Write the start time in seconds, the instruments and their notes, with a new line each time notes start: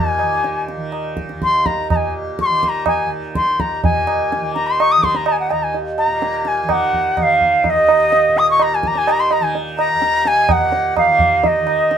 Already playing: tanpura D#2 A#2 D#3, bansuri G#5
0.19 tanpura D#3, tabla na
0.44 tabla te
0.69 tabla te
0.76 tanpura D#3
0.92 tabla na
1.17 tabla ke
1.29 tanpura D#2, tabla te
1.42 bansuri C6, tabla ke
1.66 bansuri A#5, tabla ke
1.90 tanpura A#2, bansuri A#5, tabla na, tabla ge
1.96 bansuri G#5
2.39 bansuri C#6, tabla ke
2.46 tanpura D#3, bansuri C6
2.63 bansuri C6, tabla ke
2.69 bansuri A#5
2.86 bansuri G#5, tabla na, tabla ge
3.04 tanpura D#3
3.35 bansuri C6, tabla ke
3.60 tanpura D#2, bansuri A#5, tabla ke
3.84 tanpura A#2, bansuri G#5, tabla tin, tabla ge
4.07 tabla na
4.32 tabla te
4.39 tanpura D#3
4.54 bansuri A#5, tabla te
4.67 bansuri C6
4.80 bansuri C#6, tabla na
4.92 bansuri D#6
4.96 tanpura D#3
5.04 bansuri C6, tabla ke
5.14 bansuri A#5, tabla te
5.26 bansuri G#5, tabla na
5.40 bansuri F#5
5.51 tanpura D#2, bansuri A#5, tabla na
5.63 bansuri G#5
5.74 tabla tin
5.98 bansuri A#5, tabla na
6.07 tanpura A#2
6.22 tabla te
6.45 bansuri G#5, tabla te
6.63 tanpura D#3, bansuri G#5
6.69 bansuri F#5, tabla na, tabla ge
6.93 tabla ge
7.17 tanpura D#3, bansuri F#5, tabla na, tabla ge
7.23 bansuri F5
7.41 tabla ge
7.64 bansuri F5, tabla tin, tabla ge
7.70 tanpura D#2, bansuri D#5
7.89 tabla na
8.12 tabla te
8.28 tanpura A#2
8.36 bansuri D#6, tabla te
8.51 bansuri C#6
8.59 bansuri A#5, tabla na
8.75 bansuri G#5
8.83 tanpura D#3, bansuri A#5, tabla ke
8.95 bansuri G#5, tabla te
9.07 bansuri A#5, tabla na
9.20 bansuri C6
9.31 bansuri A#5, tabla na
9.39 tanpura D#3, bansuri G#5
9.55 tabla tin
9.78 bansuri A#5, tabla na
9.94 tanpura D#2
10.02 tabla te
10.25 bansuri G#5, tabla te
10.49 tanpura A#2, bansuri F#5, tabla na, tabla ge
10.72 tabla te
10.97 bansuri F5, tabla na, tabla ge
11.05 tanpura D#3
11.19 tabla ge
11.44 bansuri D#5, tabla tin, tabla ge
11.61 tanpura D#3
11.67 tabla na
11.91 tabla te